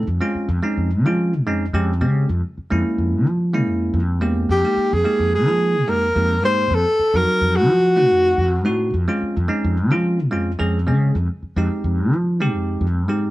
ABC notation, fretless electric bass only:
X:1
M:4/4
L:1/16
Q:"Swing 16ths" 1/4=108
K:Fm
V:1 name="Fretless electric bass" clef=bass
F,, z2 F,, z F,,2 F,3 F,,2 F,,2 D,2 | F,, z2 F,, z F,,2 F,3 F,,2 F,,2 =E,,2 | F,, z2 F,, z F,,2 F,3 F,,2 F,,2 A,,2 | F,, z2 F,, z F,,2 F,3 F,,2 F,,2 =A,,2 |
F,, z2 F,, z F,,2 F,3 F,,2 F,,2 D,2 | F,, z2 F,, z F,,2 F,3 F,,2 F,,2 A,,2 |]